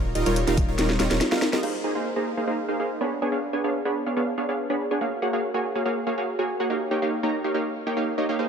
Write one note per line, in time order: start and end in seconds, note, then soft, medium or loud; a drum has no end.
0.00 0.13 D#1 loud
0.00 0.13 G3 medium
0.00 0.13 D#4 medium
0.00 0.13 F4 medium
0.00 0.13 A#4 medium
0.00 0.13 C#5 medium
0.15 0.24 D#1 loud
0.15 0.24 G3 loud
0.15 0.24 D#4 medium
0.15 0.24 F4 medium
0.15 0.24 A#4 medium
0.15 0.24 D#5 loud
0.15 closed hi-hat medium
0.26 0.45 D#1 loud
0.26 0.45 G3 medium
0.26 0.45 D#4 medium
0.26 0.45 F4 medium
0.26 0.45 A#4 medium
0.26 0.45 C#5 loud
0.26 closed hi-hat medium
0.36 closed hi-hat medium
0.47 0.66 D#1 loud
0.47 0.66 G3 loud
0.47 0.66 D#4 medium
0.47 0.66 F4 medium
0.47 0.66 A#4 medium
0.47 0.66 F5 loud
0.47 snare soft
0.47 closed hi-hat medium
0.57 kick loud
0.57 closed hi-hat medium
0.68 0.76 D#1 loud
0.68 0.76 G3 medium
0.68 0.76 D#4 medium
0.68 0.76 F4 medium
0.68 0.76 A#4 medium
0.68 0.76 C#5 medium
0.78 0.98 D#1 loud
0.78 0.97 G3 medium
0.78 0.97 D#4 medium
0.78 0.97 F4 medium
0.78 0.97 A#4 medium
0.78 0.97 C#5 loud
0.78 snare medium
0.78 closed hi-hat medium
0.90 snare medium
1.00 1.08 D#1 medium
1.00 1.08 G3 medium
1.00 1.08 D#4 medium
1.00 1.08 F4 medium
1.00 1.08 A#4 medium
1.00 1.08 C#5 medium
1.00 snare medium
1.00 closed hi-hat medium
1.11 1.21 D#1 loud
1.11 1.29 G3 medium
1.11 1.29 D#4 medium
1.11 1.29 F4 medium
1.11 1.29 A#4 medium
1.11 1.29 C#5 medium
1.11 snare medium
1.11 closed hi-hat medium
1.21 snare medium
1.21 closed hi-hat medium
1.32 1.50 G3 medium
1.32 1.50 D#4 medium
1.32 1.50 F4 medium
1.32 1.50 A#4 medium
1.32 1.50 F5 loud
1.32 snare medium
1.42 snare loud
1.42 open hi-hat medium
1.53 1.61 G3 loud
1.53 1.61 D#4 medium
1.53 1.61 F4 medium
1.53 1.61 A#4 medium
1.53 1.61 D#5 loud
1.53 snare medium
1.63 1.82 A#3 medium
1.63 1.82 D#4 medium
1.63 1.82 G#4 medium
1.63 1.82 C5 medium
1.63 1.82 F5 medium
1.63 crash medium
1.84 1.93 A#3 medium
1.84 1.93 D#4 medium
1.84 1.93 G#4 medium
1.84 1.93 C5 medium
1.84 1.93 G#5 loud
1.95 2.14 A#3 medium
1.95 2.14 D#4 medium
1.95 2.14 G#4 medium
1.95 2.14 C5 medium
1.95 2.14 F5 medium
2.16 2.35 A#3 medium
2.16 2.35 D#4 medium
2.16 2.35 G#4 medium
2.16 2.35 C5 medium
2.16 2.35 A#5 loud
2.37 2.45 A#3 medium
2.37 2.45 D#4 medium
2.37 2.45 G#4 medium
2.37 2.45 C5 medium
2.37 2.45 F5 medium
2.47 2.66 A#3 medium
2.47 2.66 D#4 medium
2.47 2.66 G#4 medium
2.47 2.66 C5 medium
2.47 2.66 F5 medium
2.69 2.77 A#3 medium
2.69 2.77 D#4 medium
2.69 2.77 G#4 medium
2.69 2.77 C5 medium
2.69 2.77 F5 medium
2.80 2.98 A#3 medium
2.80 2.98 D#4 medium
2.80 2.98 G#4 medium
2.80 2.98 C5 medium
2.80 2.98 F5 medium
3.01 3.19 B3 medium
3.01 3.19 D4 medium
3.01 3.19 G#4 medium
3.01 3.19 C#5 medium
3.01 3.19 B5 medium
3.22 3.30 B3 medium
3.22 3.30 D4 medium
3.22 3.30 G#4 medium
3.22 3.30 C#5 medium
3.22 3.30 G#5 loud
3.32 3.51 B3 medium
3.32 3.51 D4 medium
3.32 3.51 G#4 medium
3.32 3.51 C#5 medium
3.32 3.51 F5 medium
3.53 3.62 B3 medium
3.53 3.62 D4 medium
3.53 3.62 G#4 medium
3.53 3.62 C#5 medium
3.53 3.62 G#5 loud
3.64 3.83 B3 medium
3.64 3.83 D4 medium
3.64 3.83 G#4 medium
3.64 3.83 C#5 medium
3.64 3.83 F5 medium
3.85 4.04 B3 medium
3.85 4.04 D4 medium
3.85 4.04 G#4 medium
3.85 4.04 C#5 medium
3.85 4.04 B5 loud
4.06 4.14 B3 medium
4.06 4.14 D4 medium
4.06 4.14 G#4 medium
4.06 4.14 C#5 medium
4.06 4.14 F5 medium
4.17 4.35 B3 medium
4.17 4.35 D4 medium
4.17 4.35 G#4 medium
4.17 4.35 C#5 medium
4.17 4.35 F5 medium
4.38 4.46 B3 medium
4.38 4.46 D4 medium
4.38 4.46 G#4 medium
4.38 4.46 C#5 medium
4.38 4.46 F5 medium
4.49 4.67 B3 medium
4.49 4.67 D4 medium
4.49 4.67 G#4 medium
4.49 4.67 C#5 medium
4.49 4.67 F5 medium
4.70 4.88 B3 medium
4.70 4.88 D4 medium
4.70 4.88 G#4 medium
4.70 4.88 C#5 medium
4.70 4.88 B5 medium
4.91 4.99 B3 medium
4.91 4.99 D4 medium
4.91 4.99 G#4 medium
4.91 4.99 C#5 medium
4.91 4.99 G#5 loud
5.01 5.20 A#3 medium
5.01 5.20 F#4 medium
5.01 5.20 G#4 medium
5.01 5.20 C#5 medium
5.01 5.20 F5 medium
5.22 5.31 A#3 medium
5.22 5.31 F#4 medium
5.22 5.31 G#4 medium
5.22 5.31 C#5 medium
5.22 5.31 F#5 loud
5.33 5.52 A#3 medium
5.33 5.52 F#4 medium
5.33 5.52 G#4 medium
5.33 5.52 C#5 medium
5.33 5.52 F5 medium
5.54 5.73 A#3 medium
5.54 5.73 F#4 medium
5.54 5.73 G#4 medium
5.54 5.73 C#5 medium
5.54 5.73 G#5 loud
5.75 5.83 A#3 medium
5.75 5.83 F#4 medium
5.75 5.83 G#4 medium
5.75 5.83 C#5 medium
5.75 5.83 F5 medium
5.86 6.04 A#3 medium
5.86 6.04 F#4 medium
5.86 6.04 G#4 medium
5.86 6.04 C#5 medium
5.86 6.04 F5 medium
6.07 6.15 A#3 medium
6.07 6.15 F#4 medium
6.07 6.15 G#4 medium
6.07 6.15 C#5 medium
6.07 6.15 F5 medium
6.18 6.36 A#3 medium
6.18 6.36 F#4 medium
6.18 6.36 G#4 medium
6.18 6.36 C#5 medium
6.18 6.36 F5 medium
6.39 6.57 A#3 medium
6.39 6.57 F#4 medium
6.39 6.57 G#4 medium
6.39 6.57 C#5 medium
6.39 6.57 G#5 medium
6.60 6.68 A#3 medium
6.60 6.68 F#4 medium
6.60 6.68 G#4 medium
6.60 6.68 C#5 medium
6.60 6.68 F#5 loud
6.70 6.89 A#3 medium
6.70 6.89 D#4 medium
6.70 6.89 G4 medium
6.70 6.89 C#5 medium
6.70 6.89 F5 medium
6.91 7.00 A#3 medium
6.91 7.00 D#4 medium
6.91 7.00 G4 medium
6.91 7.00 C#5 medium
6.91 7.00 G5 loud
7.02 7.21 A#3 medium
7.02 7.21 D#4 medium
7.02 7.21 G4 medium
7.02 7.21 C#5 medium
7.02 7.21 F5 medium
7.23 7.42 A#3 medium
7.23 7.42 D#4 medium
7.23 7.42 G4 medium
7.23 7.42 C#5 medium
7.23 7.42 A#5 loud
7.44 7.52 A#3 medium
7.44 7.52 D#4 medium
7.44 7.52 G4 medium
7.44 7.52 C#5 medium
7.44 7.52 F5 medium
7.54 7.73 A#3 medium
7.54 7.73 D#4 medium
7.54 7.73 G4 medium
7.54 7.73 C#5 medium
7.54 7.73 F5 medium
7.87 7.95 A#3 medium
7.87 7.95 D#4 medium
7.87 7.95 G4 medium
7.87 7.95 C#5 medium
7.87 7.95 G5 medium
7.97 8.16 A#3 medium
7.97 8.16 D#4 medium
7.97 8.16 G4 medium
7.97 8.16 C#5 medium
7.97 8.16 F5 medium
8.18 8.26 A#3 medium
8.18 8.26 D#4 medium
8.18 8.26 G4 medium
8.18 8.26 C#5 medium
8.18 8.26 D#5 medium
8.29 8.37 A#3 medium
8.29 8.37 D#4 medium
8.29 8.37 G4 medium
8.29 8.37 C#5 medium
8.29 8.37 F5 medium
8.39 8.49 A#3 medium
8.39 8.49 D#4 medium
8.39 8.49 G#4 medium
8.39 8.49 C5 medium
8.39 8.49 F5 medium